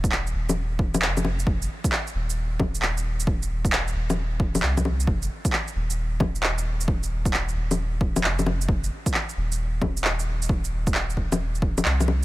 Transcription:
0.00 0.33 D#1 medium
0.00 kick loud
0.04 shaker medium
0.12 clap loud
0.27 shaker soft
0.34 1.03 D#1 medium
0.49 low bongo medium
0.49 shaker medium
0.79 kick loud
0.94 low bongo medium
0.94 shaker medium
1.02 1.46 F1 medium
1.02 clap loud
1.17 low bongo soft
1.17 shaker soft
1.25 low bongo soft
1.39 shaker medium
1.47 1.68 F1 medium
1.47 kick loud
1.62 shaker soft
1.84 kick loud
1.84 shaker medium
1.92 clap loud
2.07 shaker soft
2.14 3.94 D#1 medium
2.30 shaker medium
2.60 kick loud
2.60 low bongo medium
2.75 shaker medium
2.82 clap loud
2.97 shaker soft
3.20 shaker medium
3.27 kick loud
3.42 shaker soft
3.65 kick loud
3.65 shaker soft
3.73 clap loud
3.88 shaker soft
3.95 4.62 D#1 medium
4.10 low bongo medium
4.10 shaker medium
4.40 kick loud
4.55 low bongo medium
4.55 shaker medium
4.62 5.07 C2 medium
4.62 clap loud
4.77 kick medium
4.77 low bongo soft
4.77 shaker soft
4.85 low bongo soft
5.00 shaker medium
5.07 5.29 F1 medium
5.07 kick loud
5.22 shaker soft
5.45 kick loud
5.45 shaker soft
5.53 clap loud
5.68 shaker soft
5.75 7.55 D#1 medium
5.90 shaker soft
6.20 kick loud
6.20 low bongo medium
6.35 shaker medium
6.43 clap medium
6.58 shaker soft
6.81 shaker medium
6.88 kick loud
7.03 shaker soft
7.25 kick loud
7.25 shaker soft
7.33 clap loud
7.49 shaker soft
7.55 8.25 D#1 medium
7.71 low bongo medium
7.71 shaker medium
8.01 kick loud
8.16 low bongo medium
8.16 shaker soft
8.24 8.68 F1 loud
8.24 clap medium
8.39 low bongo soft
8.39 shaker soft
8.46 low bongo soft
8.61 shaker medium
8.69 8.90 F1 loud
8.69 kick loud
8.84 shaker soft
9.06 kick medium
9.06 shaker medium
9.14 clap loud
9.29 shaker soft
9.37 11.16 D#1 medium
9.52 shaker medium
9.82 kick medium
9.82 low bongo medium
9.97 shaker medium
10.04 clap medium
10.19 shaker soft
10.42 shaker medium
10.49 kick loud
10.64 shaker soft
10.87 kick loud
10.87 shaker medium
10.95 clap loud
11.10 shaker soft
11.17 11.84 D#1 medium
11.17 kick medium
11.32 low bongo medium
11.32 shaker medium
11.55 shaker soft
11.62 kick medium
11.78 low bongo medium
11.78 shaker medium
11.85 12.25 C2 medium
11.85 clap medium
12.00 low bongo soft
12.00 shaker soft
12.08 low bongo medium

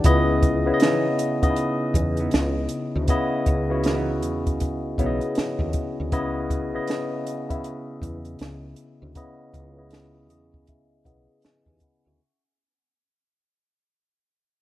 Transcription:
0.04 0.70 C#2 medium
0.04 0.53 C#3 medium
0.04 0.53 B3 medium
0.04 0.53 E4 medium
0.04 0.54 D#5 loud
0.04 kick medium
0.04 closed hi-hat medium
0.43 kick medium
0.43 closed hi-hat medium
0.66 1.24 C#3 medium
0.66 1.25 B3 medium
0.66 1.25 E4 medium
0.66 0.71 C#5 medium
0.74 1.28 D#5 medium
0.80 1.06 E3 medium
0.80 1.07 B3 medium
0.80 1.07 D#4 medium
0.80 snare medium
0.80 closed hi-hat medium
1.19 closed hi-hat medium
1.42 2.63 C#3 medium
1.42 2.64 B3 medium
1.42 1.47 D#4 medium
1.42 2.64 D#5 medium
1.42 kick medium
1.42 closed hi-hat soft
1.50 2.67 E4 medium
1.56 closed hi-hat medium
1.94 2.27 E2 medium
1.94 kick medium
1.94 closed hi-hat medium
2.17 2.32 E3 soft
2.17 2.31 B3 soft
2.17 2.31 D#4 soft
2.17 closed hi-hat soft
2.31 2.66 C#2 medium
2.31 snare loud
2.31 closed hi-hat medium
2.69 closed hi-hat medium
2.95 3.07 D2 medium
3.08 3.57 C#3 medium
3.08 3.57 B3 medium
3.08 3.57 E4 medium
3.08 3.58 D#5 loud
3.08 kick medium
3.08 closed hi-hat medium
3.46 4.24 C#2 medium
3.46 kick medium
3.46 closed hi-hat medium
3.70 4.77 C#3 medium
3.70 4.77 B3 medium
3.70 4.77 E4 medium
3.70 4.78 F#4 medium
3.84 4.10 E3 medium
3.84 4.10 B3 medium
3.84 4.11 D#4 medium
3.84 snare medium
3.84 closed hi-hat medium
4.23 4.62 E2 medium
4.23 closed hi-hat medium
4.47 kick medium
4.47 closed hi-hat soft
4.60 4.94 C#2 medium
4.60 kick medium
4.60 closed hi-hat medium
4.98 5.19 B1 medium
4.98 5.95 C#3 medium
4.98 5.19 E3 medium
4.98 5.96 B3 medium
4.98 5.20 B3 medium
4.98 5.20 D#4 medium
4.98 5.96 E4 medium
4.98 5.07 C#5 medium
4.98 kick medium
4.98 closed hi-hat medium
5.06 5.99 D#5 medium
5.21 closed hi-hat soft
5.35 muted fretless electric bass stroke soft
5.35 snare loud
5.35 closed hi-hat medium
5.59 5.72 D#2 medium
5.59 kick medium
5.73 kick medium
5.73 closed hi-hat medium
6.00 6.13 D2 medium
6.12 6.78 C#2 medium
6.12 6.60 C#3 medium
6.12 6.61 B3 medium
6.12 6.61 E4 medium
6.12 6.61 D#5 medium
6.12 kick medium
6.12 closed hi-hat medium
6.50 kick medium
6.50 closed hi-hat soft
6.74 7.32 C#3 medium
6.74 7.32 B3 medium
6.74 7.33 E4 medium
6.74 7.33 D#5 medium
6.87 snare medium
6.87 closed hi-hat medium
7.27 closed hi-hat medium
7.49 8.71 C#3 medium
7.49 8.71 B3 medium
7.49 8.71 E4 medium
7.49 8.72 E5 medium
7.49 kick medium
7.49 closed hi-hat soft
7.64 closed hi-hat medium
8.02 8.35 E2 medium
8.02 kick medium
8.02 closed hi-hat medium
8.25 closed hi-hat soft
8.39 8.73 C#2 medium
8.39 snare medium
8.39 closed hi-hat medium
8.76 closed hi-hat medium
9.02 9.14 D2 medium
9.15 9.64 C#3 medium
9.15 9.65 B3 medium
9.15 9.65 E4 medium
9.15 9.65 D#5 loud
9.15 kick medium
9.15 closed hi-hat medium
9.54 10.31 C#2 medium
9.54 kick medium
9.54 closed hi-hat soft
9.77 10.84 C#3 medium
9.77 10.85 B3 medium
9.77 10.85 E4 medium
9.77 10.29 D#5 medium
9.91 snare medium
9.91 closed hi-hat medium
10.30 10.69 E2 medium
10.30 10.65 D#5 medium
10.30 closed hi-hat medium
10.54 kick medium
10.67 11.01 C#2 medium
10.67 11.03 E5 medium
10.67 kick medium
10.67 closed hi-hat medium
11.05 11.26 B1 medium
11.05 12.02 C#3 medium
11.05 12.03 B3 medium
11.05 12.03 E4 medium
11.05 11.44 D#5 medium
11.05 11.41 F#5 medium
11.05 kick medium
11.05 closed hi-hat soft
11.42 11.67 G#5 medium
11.42 muted fretless electric bass stroke soft
11.42 snare medium
11.42 closed hi-hat medium
11.66 11.79 D#2 medium
11.66 11.82 B4 soft
11.66 11.81 G#5 soft
11.66 kick medium
11.80 12.05 D#5 soft
11.80 12.17 F#5 medium
11.80 12.05 B5 medium
11.80 kick medium
11.80 closed hi-hat medium
12.06 12.18 D2 medium
12.06 12.42 E5 soft
12.06 12.42 C#6 medium

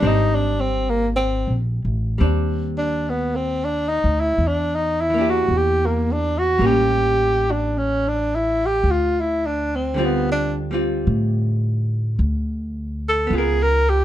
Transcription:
0.00 1.44 G#1 medium
0.00 2.17 G3 soft
0.00 2.19 C4 soft
0.04 2.20 D4 soft
0.04 0.37 D#4 medium
0.35 0.62 D4 medium
0.61 0.91 C4 medium
0.90 1.09 A#3 medium
1.16 1.59 C4 medium
1.47 1.81 A#1 soft
1.85 2.18 A1 medium
2.18 4.01 D#2 medium
2.18 4.38 G3 soft
2.18 4.39 C4 soft
2.18 4.39 D4 soft
2.78 3.11 D4 medium
3.10 3.37 B3 medium
3.36 3.66 C4 medium
3.65 3.90 D4 medium
3.89 4.22 D#4 medium
4.04 4.36 D2 medium
4.20 4.49 E4 medium
4.38 5.45 E2 medium
4.48 4.77 D4 medium
4.75 5.02 D#4 medium
5.01 5.31 E4 medium
5.10 6.58 E3 soft
5.14 6.60 A#3 soft
5.14 6.62 D4 soft
5.21 6.64 G4 soft
5.30 5.59 F#4 medium
5.48 6.56 E2 medium
5.57 5.87 G4 medium
5.86 6.14 A#3 medium
6.12 6.40 D4 medium
6.39 6.68 F#4 medium
6.58 8.80 A1 medium
6.58 8.84 G3 soft
6.58 8.85 A#3 soft
6.64 8.86 C#4 soft
6.64 7.53 G4 medium
7.51 7.79 D4 medium
7.78 8.10 C#4 medium
8.08 8.37 D4 medium
8.35 8.68 E4 medium
8.66 8.92 G4 medium
8.83 11.03 D2 medium
8.91 9.22 F4 medium
9.20 9.48 E4 medium
9.46 9.77 D4 medium
9.76 10.06 C4 medium
9.94 13.29 D3 soft
9.94 10.70 G3 soft
9.94 10.71 C4 soft
9.99 10.73 F4 soft
10.05 10.31 B3 medium
10.32 10.56 D4 medium
10.71 13.29 G3 soft
10.71 13.26 C4 soft
10.71 13.31 F4 soft
11.07 12.15 A2 medium
12.19 13.26 D2 medium
13.09 13.38 A4 medium
13.27 14.04 C#2 medium
13.27 14.04 B3 soft
13.33 14.04 F4 soft
13.33 13.65 G#4 medium
13.38 14.04 A#4 soft
13.63 13.91 A#4 medium
13.89 14.04 G4 medium

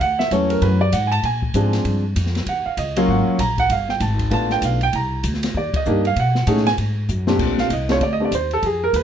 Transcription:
0.00 0.30 D2 medium
0.00 0.19 F#5 medium
0.00 kick soft
0.00 ride medium
0.19 0.31 E5 medium
0.19 snare medium
0.31 0.61 E2 medium
0.31 0.77 E3 medium
0.31 0.77 F#3 soft
0.31 0.78 A3 medium
0.31 0.78 C#4 medium
0.31 0.50 C#5 medium
0.31 kick soft
0.31 hi-hat pedal soft
0.31 ride medium
0.50 0.62 A#4 medium
0.50 ride soft
0.62 0.92 F#2 medium
0.62 0.81 B4 medium
0.62 kick soft
0.62 ride medium
0.81 0.92 D5 loud
0.92 1.23 G#2 medium
0.92 1.11 F#5 medium
0.92 kick soft
0.92 hi-hat pedal medium
0.92 ride medium
1.07 1.09 G#5 medium
1.12 1.23 A5 loud
1.12 ride soft
1.23 1.53 A#2 medium
1.23 1.82 G#5 medium
1.23 kick soft
1.23 ride medium
1.42 kick medium
1.54 1.84 G#2 medium
1.54 2.01 F3 medium
1.54 2.01 G#3 soft
1.54 2.01 C4 soft
1.54 2.01 D4 medium
1.54 kick soft
1.54 hi-hat pedal medium
1.54 ride medium
1.73 snare soft
1.73 ride soft
1.85 2.15 G2 medium
1.85 kick soft
1.85 ride medium
2.16 2.46 F2 medium
2.16 kick soft
2.16 hi-hat pedal medium
2.16 ride medium
2.26 snare soft
2.35 snare soft
2.35 ride soft
2.46 2.64 D#2 medium
2.46 2.66 F#5 medium
2.46 kick soft
2.46 ride medium
2.66 2.77 F5 medium
2.66 muted upright bass stroke soft
2.77 3.07 C#2 medium
2.77 2.97 D#5 medium
2.77 kick soft
2.77 hi-hat pedal soft
2.77 ride medium
2.96 3.37 F#3 medium
2.96 3.37 A#3 medium
2.96 3.37 C#4 medium
2.96 3.37 F4 medium
2.96 3.09 F5 medium
2.96 ride medium
3.08 3.26 G#1 medium
3.08 3.38 F#5 medium
3.08 kick soft
3.27 muted upright bass stroke soft
3.39 3.69 A#1 medium
3.39 3.58 A#5 medium
3.39 kick soft
3.39 hi-hat pedal medium
3.39 ride medium
3.58 3.70 F#5 loud
3.58 kick medium
3.58 ride soft
3.69 4.00 G1 medium
3.69 3.89 F5 medium
3.69 kick soft
3.69 ride medium
3.89 4.01 G5 medium
3.89 snare soft
4.00 4.30 G#1 medium
4.00 4.30 A5 medium
4.00 kick soft
4.00 hi-hat pedal medium
4.00 ride medium
4.19 kick soft
4.19 ride soft
4.30 4.61 A1 medium
4.30 4.77 A3 medium
4.30 4.77 B3 medium
4.30 4.77 D4 soft
4.30 4.77 F4 medium
4.30 4.51 A5 medium
4.30 kick soft
4.30 ride medium
4.50 4.63 G5 medium
4.50 snare soft
4.62 4.92 B1 medium
4.62 4.82 F5 medium
4.62 kick soft
4.62 hi-hat pedal medium
4.62 ride medium
4.81 4.94 G5 medium
4.81 ride soft
4.93 5.23 C2 medium
4.93 5.23 A#5 medium
4.93 kick soft
4.93 ride medium
5.23 5.54 D2 medium
5.23 kick soft
5.23 hi-hat pedal medium
5.23 ride medium
5.34 snare soft
5.43 snare soft
5.43 ride medium
5.54 5.72 D#2 medium
5.54 5.75 D5 medium
5.54 kick soft
5.74 6.04 D#5 medium
5.74 muted upright bass stroke soft
5.74 kick medium
5.74 ride medium
5.85 6.16 G2 medium
5.85 6.03 A#3 medium
5.85 6.03 D4 medium
5.85 6.03 D#4 medium
5.85 6.04 G4 medium
5.85 hi-hat pedal soft
6.05 6.17 F5 medium
6.05 ride soft
6.16 6.46 B2 medium
6.16 6.64 F#5 medium
6.16 kick soft
6.16 ride medium
6.35 snare soft
6.47 6.77 A2 medium
6.47 6.64 A3 medium
6.47 6.64 C#4 medium
6.47 6.65 D#4 medium
6.47 6.65 G#4 medium
6.47 kick soft
6.47 hi-hat pedal soft
6.47 ride medium
6.57 snare soft
6.66 6.74 G#5 loud
6.66 snare soft
6.66 ride soft
6.78 7.08 G#2 medium
6.78 kick soft
6.78 ride medium
7.09 7.39 F#2 medium
7.09 hi-hat pedal medium
7.27 7.68 A#2 medium
7.27 7.68 A3 medium
7.27 7.68 C4 medium
7.27 7.68 D4 medium
7.27 7.68 G4 medium
7.27 snare medium
7.39 7.69 A#1 medium
7.39 kick medium
7.39 crash medium
7.58 7.71 F5 medium
7.58 snare soft
7.70 8.00 C2 medium
7.70 7.90 D#5 medium
7.70 kick soft
7.70 hi-hat pedal medium
7.70 ride medium
7.89 8.00 A3 medium
7.89 8.00 C4 medium
7.89 8.00 D4 medium
7.89 8.00 F4 medium
7.89 8.02 C#5 medium
7.89 snare soft
7.89 ride soft
8.01 8.31 D2 medium
8.01 8.12 D5 medium
8.01 kick soft
8.01 ride soft
8.13 8.22 D#5 medium
8.20 8.31 A3 medium
8.20 8.31 C4 soft
8.20 8.31 D4 soft
8.20 8.31 G4 medium
8.25 8.33 D5 medium
8.31 8.61 D#2 medium
8.31 8.52 C5 medium
8.31 kick soft
8.31 hi-hat pedal medium
8.31 ride medium
8.51 8.64 A4 medium
8.51 ride soft
8.62 8.92 F2 medium
8.62 8.83 G#4 medium
8.62 kick soft
8.62 ride medium
8.84 8.94 A#4 medium
8.93 9.03 D#2 medium
8.93 9.03 B4 medium
8.93 kick soft
8.93 hi-hat pedal soft
8.93 ride medium

